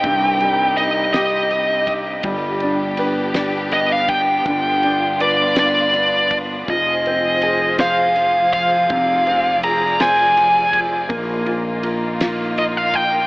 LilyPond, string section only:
\new Staff \with { instrumentName = "String section" } { \time 6/8 \key g \phrygian \tempo 4. = 54 << { g'2. | g'2. | f'2. | c''2. |
d''2. | f'2. | } \\ { <c c' ees'>2. | <b d'>2.~ | <b d'>2. | <f f' aes'>2.~ |
<f f' aes'>2. | <bes ees'>2. | } >> }